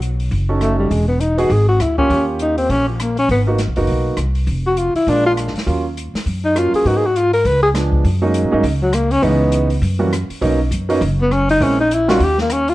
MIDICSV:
0, 0, Header, 1, 6, 480
1, 0, Start_track
1, 0, Key_signature, -6, "minor"
1, 0, Tempo, 296883
1, 1476, Time_signature, 4, 2, 24, 8
1, 13006, Key_signature, 6, "major"
1, 20606, End_track
2, 0, Start_track
2, 0, Title_t, "Tenor saxophone"
2, 0, Program_c, 0, 66
2, 1003, Note_on_c, 0, 57, 69
2, 1264, Note_off_c, 0, 57, 0
2, 1273, Note_on_c, 0, 55, 66
2, 1469, Note_on_c, 0, 56, 72
2, 1493, Note_off_c, 0, 55, 0
2, 1737, Note_off_c, 0, 56, 0
2, 1747, Note_on_c, 0, 59, 70
2, 1955, Note_on_c, 0, 63, 70
2, 1980, Note_off_c, 0, 59, 0
2, 2249, Note_on_c, 0, 66, 80
2, 2274, Note_off_c, 0, 63, 0
2, 2463, Note_on_c, 0, 68, 89
2, 2487, Note_off_c, 0, 66, 0
2, 2721, Note_off_c, 0, 68, 0
2, 2731, Note_on_c, 0, 66, 84
2, 2937, Note_on_c, 0, 64, 71
2, 2961, Note_off_c, 0, 66, 0
2, 3195, Note_off_c, 0, 64, 0
2, 3205, Note_on_c, 0, 61, 90
2, 3652, Note_off_c, 0, 61, 0
2, 3909, Note_on_c, 0, 63, 75
2, 4164, Note_off_c, 0, 63, 0
2, 4170, Note_on_c, 0, 60, 78
2, 4383, Note_on_c, 0, 61, 88
2, 4408, Note_off_c, 0, 60, 0
2, 4660, Note_off_c, 0, 61, 0
2, 4668, Note_on_c, 0, 53, 50
2, 4872, Note_on_c, 0, 58, 68
2, 4896, Note_off_c, 0, 53, 0
2, 5144, Note_off_c, 0, 58, 0
2, 5154, Note_on_c, 0, 61, 94
2, 5319, Note_off_c, 0, 61, 0
2, 5356, Note_on_c, 0, 59, 77
2, 5518, Note_off_c, 0, 59, 0
2, 7546, Note_on_c, 0, 66, 72
2, 7734, Note_on_c, 0, 65, 80
2, 7759, Note_off_c, 0, 66, 0
2, 8011, Note_off_c, 0, 65, 0
2, 8021, Note_on_c, 0, 64, 78
2, 8240, Note_on_c, 0, 62, 86
2, 8264, Note_off_c, 0, 64, 0
2, 8496, Note_off_c, 0, 62, 0
2, 8506, Note_on_c, 0, 65, 92
2, 8616, Note_off_c, 0, 65, 0
2, 10422, Note_on_c, 0, 63, 81
2, 10633, Note_on_c, 0, 65, 82
2, 10657, Note_off_c, 0, 63, 0
2, 10908, Note_off_c, 0, 65, 0
2, 10917, Note_on_c, 0, 68, 89
2, 11112, Note_on_c, 0, 66, 79
2, 11136, Note_off_c, 0, 68, 0
2, 11273, Note_on_c, 0, 68, 83
2, 11298, Note_off_c, 0, 66, 0
2, 11415, Note_on_c, 0, 66, 70
2, 11439, Note_off_c, 0, 68, 0
2, 11592, Note_on_c, 0, 65, 85
2, 11616, Note_off_c, 0, 66, 0
2, 11850, Note_off_c, 0, 65, 0
2, 11860, Note_on_c, 0, 70, 82
2, 12066, Note_on_c, 0, 71, 89
2, 12091, Note_off_c, 0, 70, 0
2, 12327, Note_off_c, 0, 71, 0
2, 12336, Note_on_c, 0, 68, 89
2, 12450, Note_off_c, 0, 68, 0
2, 14269, Note_on_c, 0, 54, 79
2, 14462, Note_on_c, 0, 58, 73
2, 14486, Note_off_c, 0, 54, 0
2, 14740, Note_on_c, 0, 61, 96
2, 14764, Note_off_c, 0, 58, 0
2, 14929, Note_on_c, 0, 59, 73
2, 14953, Note_off_c, 0, 61, 0
2, 15886, Note_off_c, 0, 59, 0
2, 18137, Note_on_c, 0, 59, 85
2, 18317, Note_on_c, 0, 61, 79
2, 18341, Note_off_c, 0, 59, 0
2, 18588, Note_off_c, 0, 61, 0
2, 18602, Note_on_c, 0, 63, 93
2, 18802, Note_on_c, 0, 61, 83
2, 18827, Note_off_c, 0, 63, 0
2, 19071, Note_off_c, 0, 61, 0
2, 19086, Note_on_c, 0, 63, 78
2, 19295, Note_on_c, 0, 64, 84
2, 19319, Note_off_c, 0, 63, 0
2, 19557, Note_off_c, 0, 64, 0
2, 19564, Note_on_c, 0, 66, 87
2, 19785, Note_on_c, 0, 67, 102
2, 19809, Note_off_c, 0, 66, 0
2, 20041, Note_off_c, 0, 67, 0
2, 20058, Note_on_c, 0, 58, 75
2, 20249, Note_on_c, 0, 61, 84
2, 20274, Note_off_c, 0, 58, 0
2, 20525, Note_on_c, 0, 65, 92
2, 20550, Note_off_c, 0, 61, 0
2, 20606, Note_off_c, 0, 65, 0
2, 20606, End_track
3, 0, Start_track
3, 0, Title_t, "Grand piano"
3, 0, Program_c, 1, 0
3, 792, Note_on_c, 1, 66, 52
3, 793, Note_on_c, 1, 61, 59
3, 796, Note_on_c, 1, 63, 48
3, 796, Note_on_c, 1, 69, 61
3, 1431, Note_off_c, 1, 66, 0
3, 1432, Note_off_c, 1, 61, 0
3, 1433, Note_off_c, 1, 63, 0
3, 1433, Note_off_c, 1, 69, 0
3, 2224, Note_on_c, 1, 59, 65
3, 2236, Note_on_c, 1, 66, 65
3, 2237, Note_on_c, 1, 63, 60
3, 2239, Note_on_c, 1, 68, 76
3, 2406, Note_off_c, 1, 59, 0
3, 2412, Note_off_c, 1, 66, 0
3, 2413, Note_off_c, 1, 63, 0
3, 2414, Note_off_c, 1, 68, 0
3, 3197, Note_on_c, 1, 58, 53
3, 3201, Note_on_c, 1, 61, 49
3, 3204, Note_on_c, 1, 67, 64
3, 3209, Note_on_c, 1, 65, 54
3, 3361, Note_off_c, 1, 61, 0
3, 3362, Note_off_c, 1, 58, 0
3, 3367, Note_off_c, 1, 67, 0
3, 3372, Note_off_c, 1, 65, 0
3, 3385, Note_on_c, 1, 61, 45
3, 3386, Note_on_c, 1, 58, 52
3, 3391, Note_on_c, 1, 67, 60
3, 3396, Note_on_c, 1, 65, 45
3, 4717, Note_off_c, 1, 61, 0
3, 4718, Note_off_c, 1, 58, 0
3, 4720, Note_off_c, 1, 67, 0
3, 4723, Note_off_c, 1, 65, 0
3, 5610, Note_on_c, 1, 58, 59
3, 5620, Note_on_c, 1, 59, 54
3, 5622, Note_on_c, 1, 66, 69
3, 5624, Note_on_c, 1, 63, 55
3, 5781, Note_off_c, 1, 58, 0
3, 5786, Note_off_c, 1, 59, 0
3, 5787, Note_off_c, 1, 63, 0
3, 5787, Note_off_c, 1, 66, 0
3, 6090, Note_on_c, 1, 63, 61
3, 6091, Note_on_c, 1, 58, 59
3, 6091, Note_on_c, 1, 59, 56
3, 6098, Note_on_c, 1, 66, 69
3, 6722, Note_off_c, 1, 59, 0
3, 6722, Note_off_c, 1, 63, 0
3, 6723, Note_off_c, 1, 58, 0
3, 6726, Note_off_c, 1, 66, 0
3, 8208, Note_on_c, 1, 56, 55
3, 8211, Note_on_c, 1, 58, 46
3, 8215, Note_on_c, 1, 65, 61
3, 8217, Note_on_c, 1, 62, 50
3, 8916, Note_off_c, 1, 56, 0
3, 8918, Note_off_c, 1, 58, 0
3, 8920, Note_off_c, 1, 65, 0
3, 8921, Note_off_c, 1, 62, 0
3, 9154, Note_on_c, 1, 54, 54
3, 9154, Note_on_c, 1, 58, 48
3, 9161, Note_on_c, 1, 61, 51
3, 9163, Note_on_c, 1, 65, 59
3, 9418, Note_off_c, 1, 54, 0
3, 9418, Note_off_c, 1, 58, 0
3, 9422, Note_off_c, 1, 61, 0
3, 9423, Note_off_c, 1, 65, 0
3, 10593, Note_on_c, 1, 58, 49
3, 10595, Note_on_c, 1, 54, 49
3, 10597, Note_on_c, 1, 61, 47
3, 10604, Note_on_c, 1, 65, 55
3, 11065, Note_off_c, 1, 54, 0
3, 11073, Note_off_c, 1, 58, 0
3, 11081, Note_off_c, 1, 61, 0
3, 11084, Note_off_c, 1, 65, 0
3, 11089, Note_on_c, 1, 54, 55
3, 11091, Note_on_c, 1, 59, 50
3, 11097, Note_on_c, 1, 58, 46
3, 11099, Note_on_c, 1, 63, 58
3, 11347, Note_off_c, 1, 54, 0
3, 11348, Note_off_c, 1, 59, 0
3, 11351, Note_off_c, 1, 58, 0
3, 11352, Note_off_c, 1, 63, 0
3, 12515, Note_on_c, 1, 56, 49
3, 12519, Note_on_c, 1, 59, 46
3, 12520, Note_on_c, 1, 53, 52
3, 12522, Note_on_c, 1, 62, 53
3, 13000, Note_off_c, 1, 56, 0
3, 13002, Note_off_c, 1, 59, 0
3, 13003, Note_off_c, 1, 53, 0
3, 13004, Note_off_c, 1, 62, 0
3, 13283, Note_on_c, 1, 54, 66
3, 13290, Note_on_c, 1, 58, 61
3, 13291, Note_on_c, 1, 56, 60
3, 13291, Note_on_c, 1, 63, 75
3, 13296, Note_on_c, 1, 61, 55
3, 13740, Note_off_c, 1, 54, 0
3, 13744, Note_off_c, 1, 56, 0
3, 13744, Note_off_c, 1, 58, 0
3, 13744, Note_off_c, 1, 63, 0
3, 13746, Note_off_c, 1, 61, 0
3, 13768, Note_on_c, 1, 56, 69
3, 13773, Note_on_c, 1, 58, 63
3, 13775, Note_on_c, 1, 54, 74
3, 13781, Note_on_c, 1, 61, 62
3, 13785, Note_on_c, 1, 63, 77
3, 13943, Note_off_c, 1, 56, 0
3, 13946, Note_off_c, 1, 58, 0
3, 13947, Note_off_c, 1, 54, 0
3, 13949, Note_off_c, 1, 61, 0
3, 13952, Note_off_c, 1, 63, 0
3, 14911, Note_on_c, 1, 52, 62
3, 14916, Note_on_c, 1, 56, 57
3, 14923, Note_on_c, 1, 61, 59
3, 14924, Note_on_c, 1, 59, 59
3, 14924, Note_on_c, 1, 63, 74
3, 15629, Note_off_c, 1, 52, 0
3, 15631, Note_off_c, 1, 56, 0
3, 15634, Note_off_c, 1, 61, 0
3, 15635, Note_off_c, 1, 59, 0
3, 15635, Note_off_c, 1, 63, 0
3, 16151, Note_on_c, 1, 55, 58
3, 16153, Note_on_c, 1, 52, 62
3, 16153, Note_on_c, 1, 58, 59
3, 16161, Note_on_c, 1, 66, 66
3, 16169, Note_on_c, 1, 61, 55
3, 16334, Note_off_c, 1, 55, 0
3, 16335, Note_off_c, 1, 52, 0
3, 16335, Note_off_c, 1, 58, 0
3, 16339, Note_off_c, 1, 66, 0
3, 16342, Note_off_c, 1, 61, 0
3, 16832, Note_on_c, 1, 54, 66
3, 16838, Note_on_c, 1, 58, 57
3, 16841, Note_on_c, 1, 59, 57
3, 16842, Note_on_c, 1, 61, 61
3, 16848, Note_on_c, 1, 63, 77
3, 17097, Note_off_c, 1, 54, 0
3, 17100, Note_off_c, 1, 58, 0
3, 17102, Note_off_c, 1, 59, 0
3, 17102, Note_off_c, 1, 61, 0
3, 17106, Note_off_c, 1, 63, 0
3, 17602, Note_on_c, 1, 58, 65
3, 17605, Note_on_c, 1, 54, 74
3, 17612, Note_on_c, 1, 59, 68
3, 17617, Note_on_c, 1, 61, 67
3, 17619, Note_on_c, 1, 63, 82
3, 17778, Note_off_c, 1, 58, 0
3, 17779, Note_off_c, 1, 54, 0
3, 17783, Note_off_c, 1, 59, 0
3, 17786, Note_off_c, 1, 61, 0
3, 17787, Note_off_c, 1, 63, 0
3, 18766, Note_on_c, 1, 56, 57
3, 18766, Note_on_c, 1, 61, 55
3, 18768, Note_on_c, 1, 58, 49
3, 18773, Note_on_c, 1, 60, 55
3, 18774, Note_on_c, 1, 64, 62
3, 19023, Note_off_c, 1, 61, 0
3, 19024, Note_off_c, 1, 56, 0
3, 19025, Note_off_c, 1, 58, 0
3, 19027, Note_off_c, 1, 60, 0
3, 19028, Note_off_c, 1, 64, 0
3, 19535, Note_on_c, 1, 55, 77
3, 19539, Note_on_c, 1, 58, 66
3, 19541, Note_on_c, 1, 65, 88
3, 19542, Note_on_c, 1, 63, 67
3, 19544, Note_on_c, 1, 61, 68
3, 19704, Note_off_c, 1, 55, 0
3, 19706, Note_off_c, 1, 58, 0
3, 19707, Note_off_c, 1, 63, 0
3, 19707, Note_off_c, 1, 65, 0
3, 19708, Note_off_c, 1, 61, 0
3, 20606, End_track
4, 0, Start_track
4, 0, Title_t, "Upright bass"
4, 0, Program_c, 2, 32
4, 0, Note_on_c, 2, 35, 79
4, 465, Note_off_c, 2, 35, 0
4, 504, Note_on_c, 2, 30, 78
4, 1422, Note_off_c, 2, 30, 0
4, 1466, Note_on_c, 2, 28, 83
4, 2383, Note_off_c, 2, 28, 0
4, 2418, Note_on_c, 2, 32, 87
4, 2873, Note_off_c, 2, 32, 0
4, 2906, Note_on_c, 2, 38, 69
4, 3358, Note_off_c, 2, 38, 0
4, 3389, Note_on_c, 2, 39, 84
4, 4305, Note_off_c, 2, 39, 0
4, 4356, Note_on_c, 2, 34, 79
4, 5269, Note_off_c, 2, 34, 0
4, 5314, Note_on_c, 2, 32, 79
4, 5911, Note_off_c, 2, 32, 0
4, 5947, Note_on_c, 2, 35, 58
4, 6097, Note_off_c, 2, 35, 0
4, 6107, Note_on_c, 2, 30, 65
4, 6256, Note_off_c, 2, 30, 0
4, 6265, Note_on_c, 2, 35, 74
4, 6718, Note_off_c, 2, 35, 0
4, 6739, Note_on_c, 2, 36, 72
4, 7195, Note_off_c, 2, 36, 0
4, 7225, Note_on_c, 2, 29, 80
4, 7948, Note_off_c, 2, 29, 0
4, 8194, Note_on_c, 2, 34, 85
4, 8913, Note_off_c, 2, 34, 0
4, 9162, Note_on_c, 2, 39, 77
4, 9878, Note_off_c, 2, 39, 0
4, 10119, Note_on_c, 2, 42, 76
4, 10837, Note_off_c, 2, 42, 0
4, 11074, Note_on_c, 2, 44, 75
4, 11992, Note_off_c, 2, 44, 0
4, 12042, Note_on_c, 2, 37, 84
4, 12956, Note_off_c, 2, 37, 0
4, 13004, Note_on_c, 2, 42, 80
4, 13600, Note_off_c, 2, 42, 0
4, 13629, Note_on_c, 2, 46, 67
4, 13785, Note_off_c, 2, 46, 0
4, 13799, Note_on_c, 2, 43, 68
4, 13947, Note_off_c, 2, 43, 0
4, 13957, Note_on_c, 2, 37, 91
4, 14872, Note_off_c, 2, 37, 0
4, 14912, Note_on_c, 2, 37, 84
4, 15829, Note_off_c, 2, 37, 0
4, 15871, Note_on_c, 2, 42, 87
4, 16592, Note_off_c, 2, 42, 0
4, 16839, Note_on_c, 2, 35, 81
4, 17287, Note_off_c, 2, 35, 0
4, 17311, Note_on_c, 2, 42, 79
4, 17762, Note_off_c, 2, 42, 0
4, 17799, Note_on_c, 2, 30, 95
4, 18712, Note_off_c, 2, 30, 0
4, 18762, Note_on_c, 2, 34, 81
4, 19672, Note_off_c, 2, 34, 0
4, 19723, Note_on_c, 2, 39, 92
4, 20606, Note_off_c, 2, 39, 0
4, 20606, End_track
5, 0, Start_track
5, 0, Title_t, "Muted upright bass strokes"
5, 7998, Note_on_c, 9, 29, 37
5, 8160, Note_off_c, 9, 29, 0
5, 8959, Note_on_c, 9, 29, 36
5, 9121, Note_off_c, 9, 29, 0
5, 9921, Note_on_c, 9, 29, 38
5, 10083, Note_off_c, 9, 29, 0
5, 10873, Note_on_c, 9, 29, 34
5, 11034, Note_off_c, 9, 29, 0
5, 16643, Note_on_c, 9, 29, 38
5, 16804, Note_off_c, 9, 29, 0
5, 20606, End_track
6, 0, Start_track
6, 0, Title_t, "Drums"
6, 31, Note_on_c, 9, 42, 43
6, 193, Note_off_c, 9, 42, 0
6, 320, Note_on_c, 9, 46, 34
6, 482, Note_off_c, 9, 46, 0
6, 507, Note_on_c, 9, 36, 34
6, 510, Note_on_c, 9, 46, 38
6, 669, Note_off_c, 9, 36, 0
6, 672, Note_off_c, 9, 46, 0
6, 986, Note_on_c, 9, 37, 57
6, 987, Note_on_c, 9, 42, 44
6, 1147, Note_off_c, 9, 37, 0
6, 1149, Note_off_c, 9, 42, 0
6, 1465, Note_on_c, 9, 36, 32
6, 1469, Note_on_c, 9, 46, 44
6, 1627, Note_off_c, 9, 36, 0
6, 1630, Note_off_c, 9, 46, 0
6, 1948, Note_on_c, 9, 42, 42
6, 2110, Note_off_c, 9, 42, 0
6, 2237, Note_on_c, 9, 46, 36
6, 2399, Note_off_c, 9, 46, 0
6, 2425, Note_on_c, 9, 36, 31
6, 2426, Note_on_c, 9, 46, 41
6, 2586, Note_off_c, 9, 36, 0
6, 2587, Note_off_c, 9, 46, 0
6, 2910, Note_on_c, 9, 37, 54
6, 2911, Note_on_c, 9, 42, 45
6, 3071, Note_off_c, 9, 37, 0
6, 3073, Note_off_c, 9, 42, 0
6, 3200, Note_on_c, 9, 36, 42
6, 3361, Note_off_c, 9, 36, 0
6, 3393, Note_on_c, 9, 36, 31
6, 3401, Note_on_c, 9, 46, 37
6, 3554, Note_off_c, 9, 36, 0
6, 3562, Note_off_c, 9, 46, 0
6, 3870, Note_on_c, 9, 42, 43
6, 4031, Note_off_c, 9, 42, 0
6, 4169, Note_on_c, 9, 46, 36
6, 4330, Note_off_c, 9, 46, 0
6, 4357, Note_on_c, 9, 36, 33
6, 4365, Note_on_c, 9, 46, 42
6, 4519, Note_off_c, 9, 36, 0
6, 4527, Note_off_c, 9, 46, 0
6, 4847, Note_on_c, 9, 37, 56
6, 4849, Note_on_c, 9, 42, 50
6, 5009, Note_off_c, 9, 37, 0
6, 5011, Note_off_c, 9, 42, 0
6, 5128, Note_on_c, 9, 46, 36
6, 5290, Note_off_c, 9, 46, 0
6, 5317, Note_on_c, 9, 36, 32
6, 5324, Note_on_c, 9, 46, 42
6, 5479, Note_off_c, 9, 36, 0
6, 5486, Note_off_c, 9, 46, 0
6, 5795, Note_on_c, 9, 38, 31
6, 5796, Note_on_c, 9, 42, 45
6, 5956, Note_off_c, 9, 38, 0
6, 5958, Note_off_c, 9, 42, 0
6, 6079, Note_on_c, 9, 46, 38
6, 6241, Note_off_c, 9, 46, 0
6, 6261, Note_on_c, 9, 46, 41
6, 6268, Note_on_c, 9, 36, 33
6, 6422, Note_off_c, 9, 46, 0
6, 6430, Note_off_c, 9, 36, 0
6, 6742, Note_on_c, 9, 37, 51
6, 6743, Note_on_c, 9, 42, 46
6, 6903, Note_off_c, 9, 37, 0
6, 6905, Note_off_c, 9, 42, 0
6, 7034, Note_on_c, 9, 46, 34
6, 7195, Note_off_c, 9, 46, 0
6, 7230, Note_on_c, 9, 36, 31
6, 7230, Note_on_c, 9, 46, 39
6, 7392, Note_off_c, 9, 36, 0
6, 7392, Note_off_c, 9, 46, 0
6, 7710, Note_on_c, 9, 42, 42
6, 7872, Note_off_c, 9, 42, 0
6, 8013, Note_on_c, 9, 46, 35
6, 8174, Note_off_c, 9, 46, 0
6, 8197, Note_on_c, 9, 36, 34
6, 8210, Note_on_c, 9, 46, 44
6, 8359, Note_off_c, 9, 36, 0
6, 8372, Note_off_c, 9, 46, 0
6, 8688, Note_on_c, 9, 37, 57
6, 8689, Note_on_c, 9, 42, 50
6, 8849, Note_off_c, 9, 37, 0
6, 8851, Note_off_c, 9, 42, 0
6, 8852, Note_on_c, 9, 38, 25
6, 8981, Note_on_c, 9, 46, 35
6, 9013, Note_off_c, 9, 38, 0
6, 9016, Note_on_c, 9, 38, 36
6, 9143, Note_off_c, 9, 46, 0
6, 9163, Note_on_c, 9, 36, 30
6, 9174, Note_on_c, 9, 46, 38
6, 9178, Note_off_c, 9, 38, 0
6, 9325, Note_off_c, 9, 36, 0
6, 9336, Note_off_c, 9, 46, 0
6, 9656, Note_on_c, 9, 42, 45
6, 9818, Note_off_c, 9, 42, 0
6, 9946, Note_on_c, 9, 38, 39
6, 9947, Note_on_c, 9, 46, 39
6, 10107, Note_off_c, 9, 38, 0
6, 10109, Note_off_c, 9, 46, 0
6, 10120, Note_on_c, 9, 36, 33
6, 10131, Note_on_c, 9, 46, 41
6, 10282, Note_off_c, 9, 36, 0
6, 10293, Note_off_c, 9, 46, 0
6, 10603, Note_on_c, 9, 37, 53
6, 10605, Note_on_c, 9, 42, 45
6, 10765, Note_off_c, 9, 37, 0
6, 10767, Note_off_c, 9, 42, 0
6, 10894, Note_on_c, 9, 46, 34
6, 11056, Note_off_c, 9, 46, 0
6, 11080, Note_on_c, 9, 36, 31
6, 11086, Note_on_c, 9, 46, 39
6, 11242, Note_off_c, 9, 36, 0
6, 11248, Note_off_c, 9, 46, 0
6, 11574, Note_on_c, 9, 42, 42
6, 11736, Note_off_c, 9, 42, 0
6, 11859, Note_on_c, 9, 46, 38
6, 12020, Note_off_c, 9, 46, 0
6, 12047, Note_on_c, 9, 36, 31
6, 12053, Note_on_c, 9, 46, 42
6, 12208, Note_off_c, 9, 36, 0
6, 12214, Note_off_c, 9, 46, 0
6, 12529, Note_on_c, 9, 37, 50
6, 12529, Note_on_c, 9, 38, 32
6, 12531, Note_on_c, 9, 42, 46
6, 12691, Note_off_c, 9, 37, 0
6, 12691, Note_off_c, 9, 38, 0
6, 12693, Note_off_c, 9, 42, 0
6, 12814, Note_on_c, 9, 36, 48
6, 12976, Note_off_c, 9, 36, 0
6, 13007, Note_on_c, 9, 36, 34
6, 13011, Note_on_c, 9, 46, 48
6, 13168, Note_off_c, 9, 36, 0
6, 13173, Note_off_c, 9, 46, 0
6, 13485, Note_on_c, 9, 42, 53
6, 13647, Note_off_c, 9, 42, 0
6, 13962, Note_on_c, 9, 36, 35
6, 13968, Note_on_c, 9, 46, 47
6, 14124, Note_off_c, 9, 36, 0
6, 14130, Note_off_c, 9, 46, 0
6, 14438, Note_on_c, 9, 37, 59
6, 14439, Note_on_c, 9, 42, 55
6, 14600, Note_off_c, 9, 37, 0
6, 14601, Note_off_c, 9, 42, 0
6, 14729, Note_on_c, 9, 46, 40
6, 14891, Note_off_c, 9, 46, 0
6, 14916, Note_on_c, 9, 36, 34
6, 14921, Note_on_c, 9, 46, 46
6, 15078, Note_off_c, 9, 36, 0
6, 15083, Note_off_c, 9, 46, 0
6, 15390, Note_on_c, 9, 42, 48
6, 15551, Note_off_c, 9, 42, 0
6, 15684, Note_on_c, 9, 46, 43
6, 15845, Note_off_c, 9, 46, 0
6, 15878, Note_on_c, 9, 36, 38
6, 15888, Note_on_c, 9, 46, 49
6, 16039, Note_off_c, 9, 36, 0
6, 16050, Note_off_c, 9, 46, 0
6, 16374, Note_on_c, 9, 37, 57
6, 16375, Note_on_c, 9, 42, 53
6, 16535, Note_off_c, 9, 37, 0
6, 16537, Note_off_c, 9, 42, 0
6, 16657, Note_on_c, 9, 46, 37
6, 16819, Note_off_c, 9, 46, 0
6, 16840, Note_on_c, 9, 36, 34
6, 16844, Note_on_c, 9, 46, 47
6, 17001, Note_off_c, 9, 36, 0
6, 17006, Note_off_c, 9, 46, 0
6, 17326, Note_on_c, 9, 42, 52
6, 17487, Note_off_c, 9, 42, 0
6, 17619, Note_on_c, 9, 46, 41
6, 17781, Note_off_c, 9, 46, 0
6, 17806, Note_on_c, 9, 36, 33
6, 17813, Note_on_c, 9, 46, 44
6, 17968, Note_off_c, 9, 36, 0
6, 17975, Note_off_c, 9, 46, 0
6, 18294, Note_on_c, 9, 37, 58
6, 18295, Note_on_c, 9, 42, 53
6, 18455, Note_off_c, 9, 37, 0
6, 18457, Note_off_c, 9, 42, 0
6, 18583, Note_on_c, 9, 46, 42
6, 18745, Note_off_c, 9, 46, 0
6, 18771, Note_on_c, 9, 36, 37
6, 18783, Note_on_c, 9, 46, 46
6, 18933, Note_off_c, 9, 36, 0
6, 18944, Note_off_c, 9, 46, 0
6, 19260, Note_on_c, 9, 42, 53
6, 19422, Note_off_c, 9, 42, 0
6, 19547, Note_on_c, 9, 38, 56
6, 19548, Note_on_c, 9, 46, 42
6, 19708, Note_off_c, 9, 38, 0
6, 19710, Note_off_c, 9, 46, 0
6, 19728, Note_on_c, 9, 36, 35
6, 19730, Note_on_c, 9, 46, 50
6, 19890, Note_off_c, 9, 36, 0
6, 19892, Note_off_c, 9, 46, 0
6, 20019, Note_on_c, 9, 38, 36
6, 20180, Note_off_c, 9, 38, 0
6, 20204, Note_on_c, 9, 37, 57
6, 20206, Note_on_c, 9, 42, 55
6, 20366, Note_off_c, 9, 37, 0
6, 20368, Note_off_c, 9, 42, 0
6, 20497, Note_on_c, 9, 46, 42
6, 20606, Note_off_c, 9, 46, 0
6, 20606, End_track
0, 0, End_of_file